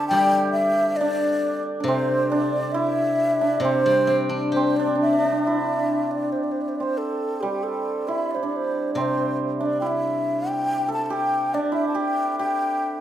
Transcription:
0.00 0.99 D3 medium
0.00 1.61 C4 medium
0.00 1.00 D4 medium
0.00 2.36 E4 loud
0.00 0.13 G4 loud
0.00 2.63 A4 medium
0.08 2.73 G3 medium
0.08 0.51 G5 loud
0.13 3.27 G4 loud
0.52 0.98 E5 loud
0.96 1.64 D5 loud
1.01 1.80 D4 medium
1.80 3.59 C3 medium
1.80 2.31 D4 medium
1.80 2.32 C5 medium
1.88 3.64 C4 medium
2.30 3.41 D4 medium
2.30 2.73 D5 medium
2.72 5.47 E4 medium
2.72 3.63 E5 medium
3.41 4.79 D4 medium
3.60 6.31 C3 medium
3.60 4.23 C5 loud
3.64 4.56 C4 medium
3.86 5.67 G3 medium
4.07 5.88 C4 medium
4.29 6.10 D4 medium
4.52 6.31 G4 medium
4.52 4.78 C5 medium
4.56 6.80 C4 medium
4.77 4.86 D4 medium
4.77 5.00 D5 medium
4.86 4.95 D4 medium
4.95 5.04 D4 medium
5.01 5.12 D4 medium
5.01 5.42 E5 medium
5.13 5.18 D4 medium
5.19 5.25 D4 medium
5.25 5.32 D4 medium
5.32 8.42 D4 medium
5.43 6.13 E5 medium
5.47 8.08 E4 medium
6.11 6.34 D5 medium
6.32 6.45 C5 medium
6.44 6.53 D5 medium
6.52 6.63 C5 medium
6.61 6.70 D5 medium
6.69 6.77 C5 medium
6.75 6.84 D5 medium
6.80 8.97 C4 medium
6.80 6.99 C5 medium
6.98 7.42 A4 medium
7.41 10.94 G3 medium
7.41 7.65 G4 medium
7.63 8.09 A4 medium
8.07 8.35 E4 medium
8.07 8.32 E5 medium
8.31 8.45 C5 medium
8.31 8.36 D5 medium
8.36 9.81 E4 soft
8.43 9.60 D4 medium
8.43 8.46 D5 medium
8.43 8.58 D5 medium
8.56 8.91 C5 medium
8.94 11.52 C3 medium
8.94 12.97 C4 medium
8.94 9.03 D5 medium
9.01 9.37 C5 medium
9.59 11.54 D4 medium
9.59 9.67 E5 medium
9.66 9.78 D5 medium
9.80 11.71 E4 medium
9.80 9.88 G5 medium
9.87 10.50 E5 medium
10.49 10.90 G5 medium
10.88 13.01 A4 medium
10.93 11.06 A5 medium
11.06 11.14 A5 medium
11.10 11.94 G4 medium
11.10 11.56 G5 loud
11.54 13.01 D4 medium
11.54 11.75 D5 medium
11.72 13.01 E4 medium
11.72 11.88 E5 medium
11.88 11.97 A5 medium
11.95 12.39 G4 medium
11.95 12.38 G5 medium
12.39 13.01 G4 medium
12.39 13.01 G5 medium

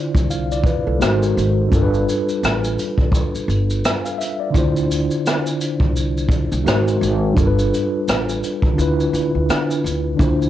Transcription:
0.00 0.96 D3 medium
0.00 0.97 D4 medium
0.00 0.98 E4 medium
0.00 0.99 F4 medium
0.00 1.03 C5 medium
0.15 0.82 C2 medium
0.15 kick loud
0.15 shaker soft
0.30 0.50 F5 medium
0.30 shaker medium
0.52 0.65 D5 medium
0.52 shaker soft
0.64 0.86 B4 medium
0.64 kick loud
0.64 closed hi-hat medium
0.64 shaker soft
0.87 1.00 C2 medium
0.87 1.20 A4 medium
0.99 1.33 G#1 loud
0.99 1.71 G#3 medium
0.99 1.72 D#4 medium
0.99 1.72 F#4 medium
0.99 1.73 A#4 medium
0.99 1.73 C5 medium
0.99 cross-stick loud
0.99 shaker medium
1.23 shaker soft
1.37 1.69 G#1 medium
1.37 closed hi-hat medium
1.37 shaker medium
1.68 4.48 G3 medium
1.68 4.49 D4 medium
1.68 kick loud
1.72 2.04 G1 loud
1.72 4.50 F4 medium
1.72 4.51 A4 medium
1.72 1.82 A#4 medium
1.72 shaker medium
1.83 4.56 B4 medium
1.94 shaker soft
2.09 closed hi-hat medium
2.09 shaker medium
2.29 shaker soft
2.43 2.75 A1 loud
2.43 cross-stick loud
2.43 shaker medium
2.64 shaker medium
2.79 closed hi-hat medium
2.79 shaker soft
2.98 kick loud
3.12 kick loud
3.12 shaker medium
3.34 muted upright bass stroke medium
3.34 shaker soft
3.48 3.80 G1 loud
3.48 closed hi-hat medium
3.48 shaker soft
3.70 shaker soft
3.85 cross-stick loud
3.85 shaker medium
4.05 4.18 F5 medium
4.05 shaker soft
4.18 4.38 E5 medium
4.18 closed hi-hat medium
4.18 shaker medium
4.40 4.73 D5 medium
4.50 6.60 D3 medium
4.50 6.61 D4 medium
4.54 5.07 D2 loud
4.54 6.62 E4 medium
4.54 6.63 F4 medium
4.54 kick loud
4.54 shaker medium
4.58 6.64 C5 medium
4.76 shaker soft
4.91 closed hi-hat medium
4.91 shaker medium
5.11 shaker soft
5.26 cross-stick loud
5.26 shaker medium
5.46 shaker medium
5.61 closed hi-hat medium
5.61 shaker medium
5.80 6.47 C2 medium
5.80 kick loud
5.96 shaker medium
6.17 shaker soft
6.29 kick loud
6.29 closed hi-hat medium
6.29 shaker soft
6.52 6.65 C2 medium
6.52 shaker soft
6.64 6.98 G#1 medium
6.64 7.35 G#3 medium
6.64 7.36 D#4 medium
6.64 7.36 F#4 medium
6.64 7.37 A#4 medium
6.64 shaker medium
6.68 7.37 C5 medium
6.68 cross-stick loud
6.88 shaker soft
7.01 7.33 G#1 loud
7.01 closed hi-hat medium
7.01 shaker medium
7.33 8.73 G3 medium
7.33 8.74 D4 medium
7.33 8.75 F4 medium
7.37 7.69 G1 loud
7.37 8.76 A4 medium
7.37 kick loud
7.37 shaker medium
7.41 7.46 A#4 medium
7.47 8.80 B4 medium
7.59 shaker soft
7.74 closed hi-hat medium
7.74 shaker medium
8.08 8.40 A1 medium
8.08 cross-stick loud
8.08 shaker medium
8.29 shaker medium
8.44 closed hi-hat medium
8.44 shaker soft
8.62 kick medium
8.74 10.14 D3 medium
8.74 10.15 D4 medium
8.78 9.10 D2 loud
8.78 10.16 E4 medium
8.78 10.17 F4 medium
8.78 10.18 B4 medium
8.78 shaker medium
9.00 shaker soft
9.13 9.32 D2 loud
9.13 closed hi-hat medium
9.13 shaker soft
9.35 9.48 D2 medium
9.49 9.81 D3 medium
9.49 cross-stick loud
9.49 shaker medium
9.71 shaker soft
9.84 10.16 D2 medium
9.84 closed hi-hat medium
9.84 shaker medium
10.15 10.49 D3 medium
10.15 10.49 D4 medium
10.19 10.49 D2 loud
10.19 10.49 E4 medium
10.19 10.49 F4 medium
10.19 kick loud
10.19 shaker medium
10.23 10.49 C5 medium
10.42 shaker soft

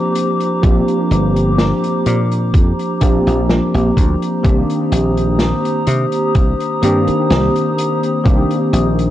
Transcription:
0.00 0.57 F3 medium
0.00 0.58 A#3 medium
0.00 0.58 C4 medium
0.00 0.58 D4 medium
0.00 0.59 G4 loud
0.00 4.40 G4 medium
0.00 4.41 C5 medium
0.00 4.41 A#5 medium
0.00 4.41 D6 medium
0.15 closed hi-hat medium
0.40 closed hi-hat soft
0.62 0.81 A#1 loud
0.62 2.95 F3 medium
0.62 2.96 A#3 medium
0.62 2.96 C4 medium
0.62 2.96 D4 medium
0.62 2.97 G4 loud
0.62 kick loud
0.62 closed hi-hat medium
0.88 closed hi-hat soft
1.11 1.71 G1 medium
1.11 closed hi-hat medium
1.36 closed hi-hat medium
1.58 snare loud
1.58 closed hi-hat medium
1.84 closed hi-hat soft
2.06 2.55 A#2 medium
2.06 closed hi-hat medium
2.31 closed hi-hat soft
2.54 2.71 F2 medium
2.54 kick loud
2.54 closed hi-hat medium
2.79 closed hi-hat medium
3.00 3.19 A#1 medium
3.00 4.38 F3 medium
3.00 4.39 A#3 medium
3.00 4.39 C4 medium
3.00 4.39 D4 medium
3.00 4.40 G4 medium
3.00 kick medium
3.00 closed hi-hat medium
3.27 3.59 A#1 loud
3.27 closed hi-hat soft
3.50 snare loud
3.50 closed hi-hat medium
3.74 3.90 A#1 loud
3.74 closed hi-hat medium
3.97 4.14 D2 medium
3.97 kick medium
3.97 closed hi-hat medium
4.22 closed hi-hat medium
4.43 4.62 C2 loud
4.43 6.76 D#3 medium
4.43 6.77 A#3 medium
4.43 6.77 C4 medium
4.43 6.78 D4 medium
4.43 9.10 G4 medium
4.43 6.78 G4 medium
4.43 9.10 C5 medium
4.43 9.10 A#5 medium
4.43 9.10 D#6 medium
4.43 kick loud
4.43 closed hi-hat medium
4.70 closed hi-hat medium
4.92 5.52 A#1 medium
4.92 closed hi-hat loud
5.17 closed hi-hat soft
5.39 snare loud
5.39 closed hi-hat medium
5.65 closed hi-hat medium
5.87 6.05 C3 medium
5.87 closed hi-hat loud
6.12 closed hi-hat soft
6.35 6.52 C2 medium
6.35 kick loud
6.35 closed hi-hat medium
6.60 closed hi-hat medium
6.81 7.07 G2 loud
6.81 8.20 D#3 medium
6.81 8.20 A#3 medium
6.81 8.20 C4 medium
6.81 8.21 D4 medium
6.81 8.21 G4 loud
6.81 closed hi-hat loud
7.07 muted slap bass stroke soft
7.07 closed hi-hat medium
7.30 7.48 C2 loud
7.30 snare loud
7.30 closed hi-hat medium
7.56 closed hi-hat medium
7.78 closed hi-hat loud
8.03 closed hi-hat medium
8.24 8.43 C2 loud
8.24 9.10 D#3 medium
8.24 9.10 A#3 medium
8.24 9.10 C4 medium
8.24 9.10 D4 medium
8.24 9.10 G4 loud
8.24 kick loud
8.24 closed hi-hat medium
8.51 closed hi-hat medium
8.73 9.10 A#1 loud
8.73 closed hi-hat medium
8.99 closed hi-hat medium

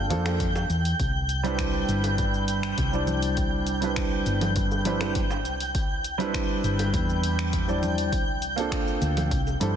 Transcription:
0.00 0.12 G1 medium
0.00 9.76 G5 medium
0.00 9.76 G6 medium
0.10 0.64 F2 medium
0.10 0.22 A#3 medium
0.10 0.22 C4 medium
0.10 0.22 D4 medium
0.10 0.22 F4 medium
0.10 0.23 A4 loud
0.10 open hi-hat medium
0.10 low conga medium
0.10 shaker medium
0.25 0.42 A#3 medium
0.25 0.42 C4 medium
0.25 0.42 D4 medium
0.25 0.43 F4 medium
0.25 0.43 A4 medium
0.25 finger snap medium
0.25 open hi-hat soft
0.25 high bongo medium
0.25 shaker soft
0.40 kick loud
0.40 open hi-hat medium
0.40 shaker soft
0.56 high bongo medium
0.56 shaker soft
0.70 0.93 E2 medium
0.70 open hi-hat soft
0.70 shaker medium
0.85 open hi-hat soft
0.85 shaker soft
1.00 1.83 C2 loud
1.00 kick loud
1.00 open hi-hat medium
1.00 shaker soft
1.29 open hi-hat soft
1.29 shaker medium
1.43 2.89 G3 loud
1.43 2.89 C4 medium
1.43 2.90 D4 medium
1.43 2.90 E4 medium
1.43 2.91 B4 loud
1.43 open hi-hat soft
1.43 shaker soft
1.59 finger snap medium
1.59 kick loud
1.59 open hi-hat medium
1.59 shaker soft
1.88 2.72 G1 medium
1.88 open hi-hat soft
1.88 shaker medium
2.04 open hi-hat soft
2.04 high bongo soft
2.04 shaker soft
2.18 kick loud
2.18 open hi-hat medium
2.18 shaker soft
2.34 shaker soft
2.48 open hi-hat medium
2.48 shaker medium
2.63 finger snap medium
2.63 open hi-hat soft
2.63 shaker soft
2.78 4.21 C2 medium
2.78 kick loud
2.78 open hi-hat medium
2.78 shaker soft
2.92 3.78 G3 medium
2.92 3.78 C4 medium
2.92 3.79 D4 medium
2.92 3.79 E4 medium
2.92 3.80 D5 medium
2.92 shaker soft
3.07 open hi-hat soft
3.07 low conga medium
3.07 shaker medium
3.22 open hi-hat soft
3.22 shaker soft
3.37 kick loud
3.37 open hi-hat medium
3.37 shaker soft
3.67 open hi-hat soft
3.67 shaker medium
3.81 4.82 G3 medium
3.81 4.82 C4 medium
3.81 4.83 D4 medium
3.81 4.83 E4 medium
3.81 4.83 B4 medium
3.81 open hi-hat soft
3.81 shaker soft
3.96 finger snap medium
3.96 kick loud
3.96 open hi-hat medium
3.96 shaker soft
4.26 5.45 G1 medium
4.26 open hi-hat soft
4.26 shaker medium
4.41 open hi-hat soft
4.41 high bongo soft
4.41 low conga medium
4.41 shaker soft
4.56 kick loud
4.56 open hi-hat medium
4.56 shaker soft
4.71 high bongo soft
4.71 shaker soft
4.85 4.97 G3 medium
4.85 4.97 C4 medium
4.85 4.98 D4 medium
4.85 4.98 E4 medium
4.85 4.98 B4 medium
4.85 open hi-hat medium
4.85 low conga medium
4.85 shaker medium
5.00 5.17 G3 medium
5.00 5.17 C4 medium
5.00 5.18 D4 medium
5.00 5.18 E4 medium
5.00 5.18 B4 medium
5.00 finger snap medium
5.00 open hi-hat soft
5.00 high bongo medium
5.00 shaker soft
5.15 kick loud
5.15 open hi-hat medium
5.15 shaker soft
5.31 high bongo medium
5.31 shaker soft
5.45 6.58 C2 medium
5.45 open hi-hat soft
5.45 shaker medium
5.60 open hi-hat soft
5.60 shaker soft
5.75 kick loud
5.75 open hi-hat medium
5.75 shaker soft
6.04 open hi-hat soft
6.04 shaker medium
6.18 7.64 G3 loud
6.18 7.64 C4 medium
6.18 7.65 D4 medium
6.18 7.65 E4 medium
6.18 7.65 B4 loud
6.18 open hi-hat soft
6.18 shaker soft
6.34 finger snap medium
6.34 kick loud
6.34 open hi-hat medium
6.34 shaker soft
6.64 6.95 G1 medium
6.64 open hi-hat soft
6.64 shaker medium
6.79 open hi-hat soft
6.79 high bongo medium
6.79 shaker soft
6.94 8.13 E2 loud
6.94 kick loud
6.94 open hi-hat medium
6.94 shaker soft
7.09 shaker soft
7.24 open hi-hat medium
7.24 shaker medium
7.39 finger snap medium
7.39 open hi-hat soft
7.39 shaker soft
7.53 kick medium
7.53 open hi-hat medium
7.53 shaker soft
7.68 8.10 G3 medium
7.68 8.10 C4 medium
7.68 8.11 D4 medium
7.68 8.11 E4 medium
7.68 8.11 D5 medium
7.68 shaker soft
7.83 open hi-hat soft
7.83 low conga medium
7.83 shaker medium
7.98 open hi-hat soft
7.98 shaker soft
8.12 8.96 C2 loud
8.12 kick loud
8.12 open hi-hat medium
8.12 shaker soft
8.42 open hi-hat soft
8.42 shaker medium
8.56 9.29 A#3 medium
8.56 9.29 C4 medium
8.56 9.30 D4 medium
8.56 9.30 F4 medium
8.56 9.30 A4 medium
8.56 open hi-hat soft
8.56 shaker soft
8.72 finger snap medium
8.72 kick loud
8.72 open hi-hat medium
8.72 shaker soft
8.88 shaker soft
9.02 9.31 D2 medium
9.02 open hi-hat soft
9.02 shaker medium
9.17 open hi-hat soft
9.17 high bongo soft
9.17 low conga medium
9.17 shaker soft
9.31 9.54 C2 medium
9.31 kick loud
9.31 open hi-hat medium
9.31 shaker soft
9.47 high bongo soft
9.47 shaker soft
9.60 9.76 G2 loud
9.60 9.72 G3 medium
9.60 9.73 C4 medium
9.60 9.73 D4 medium
9.60 9.73 E4 medium
9.60 9.73 A4 medium
9.60 open hi-hat medium
9.60 low conga medium
9.60 shaker medium

